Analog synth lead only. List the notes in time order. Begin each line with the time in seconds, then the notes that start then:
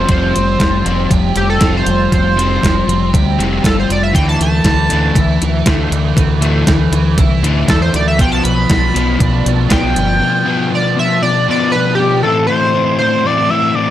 0.11 C5
1.37 G4
1.50 A4
1.77 C5
2.14 C5
3.66 A4
3.79 C5
3.92 D5
4.03 E5
4.15 G5
4.29 A5
4.42 A5
7.69 A4
7.82 C5
7.96 D5
8.08 E5
8.21 G5
8.32 A5
8.44 B5
9.72 G5
10.75 D5
10.99 E5
11.22 D5
11.51 D5
11.72 B4
11.95 G4
12.23 A4
12.47 C5
12.98 C5
13.26 D5
13.50 E5
13.75 D5